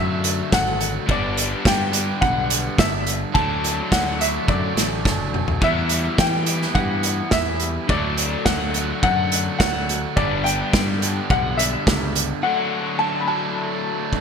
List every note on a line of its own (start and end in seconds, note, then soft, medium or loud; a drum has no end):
0.00 0.41 F#2 medium
0.00 1.06 D3 medium
0.00 1.07 F#3 medium
0.00 1.07 A3 medium
0.00 1.08 A3 medium
0.00 1.09 D4 medium
0.00 1.10 D4 medium
0.00 0.54 E5 medium
0.24 closed hi-hat medium
0.52 0.98 G#1 loud
0.52 0.93 F#5 medium
0.52 kick loud
0.52 snare loud
0.81 closed hi-hat medium
1.06 1.54 G1 medium
1.06 1.91 G2 medium
1.06 1.91 D3 medium
1.06 1.92 G3 medium
1.06 1.91 B3 medium
1.06 1.91 D4 medium
1.06 kick loud
1.11 1.68 D5 medium
1.37 closed hi-hat medium
1.65 2.10 G2 medium
1.65 2.25 G5 medium
1.65 kick loud
1.65 snare loud
1.92 3.34 G2 medium
1.92 3.31 D3 medium
1.92 3.33 G3 medium
1.92 3.33 B3 medium
1.92 3.33 D4 medium
1.92 closed hi-hat medium
2.21 2.67 B1 loud
2.21 2.80 F#5 medium
2.21 kick loud
2.50 closed hi-hat medium
2.78 3.24 G1 medium
2.78 3.19 E5 medium
2.78 kick loud
2.78 snare loud
3.07 closed hi-hat medium
3.33 3.80 D2 medium
3.33 4.17 D3 medium
3.33 4.20 F#3 medium
3.33 4.18 A3 medium
3.33 4.17 D4 loud
3.33 3.88 A5 medium
3.33 kick loud
3.64 closed hi-hat medium
3.92 4.37 D2 medium
3.92 4.21 F#5 medium
3.92 kick loud
3.92 snare loud
4.18 5.61 D3 medium
4.18 5.62 F#3 medium
4.18 5.60 A3 medium
4.18 5.60 D4 medium
4.18 4.50 E5 medium
4.18 closed hi-hat medium
4.48 4.71 F#2 medium
4.48 5.30 D5 medium
4.48 kick loud
4.76 5.02 A1 medium
4.76 snare medium
4.76 closed hi-hat medium
5.05 5.31 F#1 medium
5.05 kick loud
5.05 snare medium
5.32 5.59 E1 medium
5.32 mid tom medium
5.48 floor tom medium
5.61 6.07 E2 medium
5.61 6.48 E3 medium
5.61 6.46 G3 medium
5.61 6.46 B3 medium
5.61 6.45 E4 medium
5.61 6.22 E5 loud
5.61 kick loud
5.89 closed hi-hat medium
6.18 6.64 E3 medium
6.18 6.78 G5 medium
6.18 kick loud
6.18 snare loud
6.45 7.88 E3 medium
6.45 7.88 G3 medium
6.45 7.88 B3 medium
6.45 7.87 E4 medium
6.45 closed hi-hat medium
6.62 snare soft
6.75 7.20 G2 loud
6.75 7.34 F#5 medium
6.75 kick loud
7.03 closed hi-hat medium
7.31 7.77 E2 medium
7.31 7.72 E5 medium
7.31 kick loud
7.31 snare loud
7.60 closed hi-hat medium
7.88 8.35 D2 medium
7.88 8.73 D3 medium
7.88 8.73 F#3 medium
7.88 8.73 A3 medium
7.88 8.73 D4 loud
7.88 8.43 D5 medium
7.88 kick loud
8.18 closed hi-hat medium
8.45 8.91 D2 medium
8.45 9.02 F#5 medium
8.45 kick loud
8.45 snare loud
8.74 10.16 D3 medium
8.74 10.15 F#3 medium
8.74 10.15 A3 medium
8.74 10.18 D4 medium
8.74 closed hi-hat medium
9.03 9.48 F#2 medium
9.03 9.57 F#5 medium
9.03 kick medium
9.32 closed hi-hat medium
9.59 10.05 D2 loud
9.59 9.99 F#5 medium
9.59 kick loud
9.59 snare loud
9.89 closed hi-hat medium
10.16 10.62 G1 medium
10.16 11.00 G2 medium
10.16 11.01 D3 loud
10.16 11.01 G3 medium
10.16 11.01 B3 medium
10.16 11.01 D4 loud
10.16 10.46 D5 medium
10.16 kick loud
10.44 11.26 G5 medium
10.44 closed hi-hat medium
10.73 11.19 G2 medium
10.73 kick loud
10.73 snare loud
11.01 12.43 G2 medium
11.01 12.41 D3 medium
11.01 12.42 G3 medium
11.01 12.42 B3 medium
11.01 12.41 D4 medium
11.01 closed hi-hat medium
11.30 11.75 B1 medium
11.30 11.57 F#5 medium
11.30 kick medium
11.57 12.11 E5 medium
11.57 closed hi-hat medium
11.87 12.32 C#2 medium
11.87 kick loud
11.87 snare loud
12.16 closed hi-hat medium
12.42 13.26 D3 loud
12.42 13.26 F#3 medium
12.42 13.26 A3 loud
12.42 13.25 D4 loud
12.42 13.02 F#5 medium
12.99 13.21 A5 loud
13.20 13.28 B5 medium
13.26 14.21 D3 medium
13.26 14.21 F#3 medium
13.26 14.21 A3 medium
13.26 14.21 D4 medium
13.26 14.21 A5 medium
14.13 kick medium